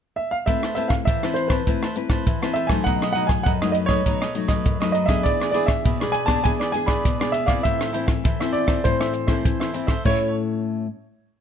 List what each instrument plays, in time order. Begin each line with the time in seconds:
0.16 grand piano E5
0.31 grand piano F5
0.46 nylon-string guitar A3 C4 E4 B4, cavaquinho A4 B4 C5 A5, grand piano E5, kick, closed hi-hat
0.63 cavaquinho B4 C5 A5, cross-stick
0.75 nylon-string guitar C4 E4 B4, cavaquinho A4 B4 C5 A5, grand piano E5, closed hi-hat
0.88 grand piano F5, muted cavaquinho stroke, kick, cross-stick, closed hi-hat
1.05 nylon-string guitar E3, cavaquinho A4 B4 C5, grand piano E5, kick, closed hi-hat
1.09 cavaquinho A5
1.22 nylon-string guitar C4 E4 B4, cavaquinho B4 C5 A5, cross-stick, closed hi-hat
1.34 grand piano C5, closed hi-hat
1.48 nylon-string guitar C4 E4 B4, grand piano B4, cavaquinho B4 C5 A5, kick, cross-stick, closed hi-hat
1.66 nylon-string guitar A3 C4 E4 B4, cavaquinho A4 B4 C5 A5, kick, closed hi-hat
1.82 cavaquinho B4 C5 A5, cross-stick
1.96 nylon-string guitar C4 E4 B4, muted cavaquinho stroke, closed hi-hat
2.10 cavaquinho B4 C5 A5, kick, cross-stick
2.27 nylon-string guitar E3, kick, closed hi-hat
2.42 nylon-string guitar C4 E4 B4, cavaquinho B4 C5 A5, cross-stick, closed hi-hat
2.54 cavaquinho A4 B4 C5 A5, grand piano E5, closed hi-hat
2.67 nylon-string guitar F#3 A3 D#4, cavaquinho B4 A5, grand piano G#5, kick, cross-stick
2.71 cavaquinho C5
2.84 nylon-string guitar B2, cavaquinho D#4 A4 B4, grand piano F#5, kick, closed hi-hat
2.89 cavaquinho D#5
3.02 cavaquinho A4 B4 D#5, cross-stick, closed hi-hat
3.13 nylon-string guitar F#3 A3 D#4, cavaquinho D#4 A4 B4, grand piano F#5, closed hi-hat
3.17 cavaquinho D#5
3.27 grand piano G#5, muted cavaquinho stroke, kick, cross-stick
3.43 nylon-string guitar F#2, cavaquinho D#4 A4, grand piano F#5, kick, closed hi-hat
3.48 cavaquinho B4 D#5
3.62 nylon-string guitar F#3 A3 D#4, cavaquinho A4 B4 D#5, cross-stick
3.72 grand piano D#5, closed hi-hat
3.86 nylon-string guitar F#3 A3, cavaquinho B4 D#5, grand piano C#5, kick, cross-stick, closed hi-hat
3.90 nylon-string guitar D#4, cavaquinho A4
4.06 nylon-string guitar B2 F#3 A3 D#4, cavaquinho D#4 A4 B4 D#5, kick, closed hi-hat
4.21 cavaquinho A4 B4 D#5, cross-stick, closed hi-hat
4.34 nylon-string guitar F#3 A3 D#4, muted cavaquinho stroke, closed hi-hat
4.48 cavaquinho A4 B4 D#5, kick, cross-stick
4.65 nylon-string guitar F#2, kick, closed hi-hat
4.80 nylon-string guitar F#3 A3 D#4, cavaquinho A4 B4 D#5, cross-stick
4.92 cavaquinho D#4 A4 B4 D#5, grand piano D#5, closed hi-hat
5.06 nylon-string guitar B3 D4 G#4, cavaquinho A4 B4 D#5, grand piano E5, kick, cross-stick, closed hi-hat
5.23 nylon-string guitar E3, cavaquinho E4 G#4 B4 D5, grand piano D5, kick, closed hi-hat
5.40 cavaquinho G#4 B4 D5, cross-stick
5.51 nylon-string guitar B3 D4 G#4, cavaquinho E4 G#4 B4, grand piano D5, closed hi-hat
5.56 cavaquinho D5
5.66 grand piano E5, muted cavaquinho stroke, kick, cross-stick, closed hi-hat
5.84 nylon-string guitar B2, cavaquinho E4 G#4 B4 D5, kick, closed hi-hat
6.00 nylon-string guitar B3 D4 G#4, cavaquinho G#4 B4 D5, cross-stick, closed hi-hat
6.12 grand piano G#5, closed hi-hat
6.26 nylon-string guitar B3 D4 G#4, cavaquinho G#4 B4 D5, grand piano A5, kick, cross-stick, closed hi-hat
6.44 nylon-string guitar E3 B3 D4 G#4, cavaquinho E4 G#4 B4 D5, grand piano G#5, kick, closed hi-hat
6.60 cavaquinho G#4 B4 D5, cross-stick
6.72 nylon-string guitar B3 D4 G#4, grand piano G#5, muted cavaquinho stroke, closed hi-hat
6.86 cavaquinho G#4 B4 D5, grand piano B5, kick, cross-stick
7.05 nylon-string guitar B2, kick, closed hi-hat
7.20 nylon-string guitar B3 D4 G#4, cavaquinho G#4 B4 D5, cross-stick, closed hi-hat
7.32 cavaquinho E4 G#4 B4 D5, grand piano E5, closed hi-hat
7.46 nylon-string guitar E3 C4 E4, cavaquinho G#4 B4 D5, grand piano F5, kick, cross-stick
7.63 nylon-string guitar A2, cavaquinho E4 A4 C5 E5, grand piano E5, kick, closed hi-hat
7.79 cavaquinho A4 C5 E5, cross-stick, closed hi-hat
7.92 nylon-string guitar E3 C4 E4, cavaquinho E4 A4 C5 E5, closed hi-hat
8.07 muted cavaquinho stroke, kick, cross-stick
8.23 nylon-string guitar E3, cavaquinho E4 A4 C5 E5, kick, closed hi-hat
8.40 nylon-string guitar E3 C4 E4, cavaquinho A4 C5 E5, cross-stick
8.53 grand piano D5, closed hi-hat
8.67 nylon-string guitar E3 C4 E4, cavaquinho A4 C5 E5, kick, cross-stick, closed hi-hat
8.84 nylon-string guitar A2 E3 C4 E4, cavaquinho E4 A4 C5 E5, grand piano C5, kick, closed hi-hat
9.00 cavaquinho A4 C5 E5, cross-stick, closed hi-hat
9.14 muted cavaquinho stroke, closed hi-hat
9.27 nylon-string guitar E3 C4 E4, cavaquinho A4 C5 E5, kick, cross-stick
9.45 nylon-string guitar E3, kick, closed hi-hat
9.60 cavaquinho A4 C5 E5, cross-stick
9.73 nylon-string guitar E3 C4 E4, cavaquinho E4 A4 C5 E5, closed hi-hat
9.87 cavaquinho A4 C5 E5, kick, cross-stick, closed hi-hat
10.04 nylon-string guitar A2 A3 C#4 E4, cavaquinho E4 A4 C#5 E5, grand piano C#5, kick, crash